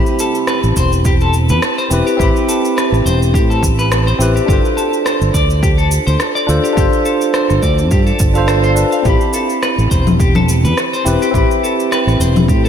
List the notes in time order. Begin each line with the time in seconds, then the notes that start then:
Already playing: C4 E4 G4 B5
0.06 cabasa
0.19 A4, cabasa
0.35 cabasa
0.47 B4, cross-stick, cabasa
0.63 A1, cabasa
0.76 E1 C5, kick, cabasa
0.93 cabasa
1.05 G4, kick, cabasa
1.21 A4, cabasa
1.33 cabasa
1.49 E2 B4, cabasa
1.62 cross-stick, cabasa
1.78 C5, cabasa
1.90 E1 C4 E4 G4 B4, cabasa
2.07 G4, cabasa
2.17 A1 C4 E4 G4, kick, cabasa
2.21 G4 B5
2.36 cabasa
2.49 A4, cabasa
2.65 cabasa
2.77 B4, cross-stick, cabasa
2.92 A1, cross-stick, cabasa
3.06 E1 C5, cabasa
3.22 cabasa
3.34 A2 G4, kick, cabasa
3.50 A4, cabasa
3.62 A1, kick, cabasa
3.79 B4, cabasa
3.92 cross-stick, cabasa
4.07 C5, cabasa
4.19 A1 C4 E4 G4 B4, cabasa
4.36 G4, cabasa
4.46 G1 D4 F4 G4, kick, cabasa
4.50 A4 C5
4.65 cabasa
4.77 A4, cabasa
4.93 cabasa
5.05 C5, cross-stick, cabasa
5.21 G1, cabasa
5.34 D2 D5, kick, cabasa
5.50 cabasa
5.63 G4, kick, cabasa
5.78 A4, cabasa
5.91 cabasa
6.07 D2 C5, cabasa
6.20 cross-stick, cabasa
6.35 D5, cabasa
6.47 D2 D4 F4 A4 C5, cabasa
6.64 G4, cabasa
6.73 D4 F4 G4
6.77 G1 A4 C5, kick, cabasa
6.93 cabasa
7.05 A4, cabasa
7.21 cabasa
7.34 C5, cross-stick, cabasa
7.50 G1, cross-stick, cabasa
7.62 D2 D5, kick, cabasa
7.79 cabasa
7.91 G2 G4, kick, cabasa
8.07 A4, cabasa
8.19 G1, kick, cabasa
8.34 D4 F4 A4 C5 F5, cabasa
8.48 C5, cross-stick, cabasa
8.64 C5, cabasa
8.75 D4 F4 A4 B4, cabasa
8.92 F5, cabasa
9.03 A1 C4 E4 G4, kick, cabasa
9.07 G4 B5
9.21 cabasa
9.33 A4, cabasa
9.50 cabasa
9.63 B4, cross-stick, cabasa
9.78 A1, cabasa
9.91 E1 C5, kick, cabasa
10.07 low conga, cabasa
10.20 G4, kick, cabasa
10.35 A4, low conga, cabasa
10.49 cabasa
10.64 E2 B4, cabasa
10.77 cross-stick, cabasa
10.93 C5, cabasa
11.05 E1 C4 E4 G4 B4, cabasa
11.22 G4, cabasa
11.31 A1 C4 E4 G4, kick, cabasa
11.35 G4 B5
11.51 cabasa
11.63 A4, cabasa
11.80 cabasa
11.92 B4, cross-stick, cabasa
12.07 A1, cross-stick, cabasa
12.20 E1 C5, cabasa
12.36 low conga, cabasa
12.48 A2 G4, kick, cabasa
12.65 A4, cabasa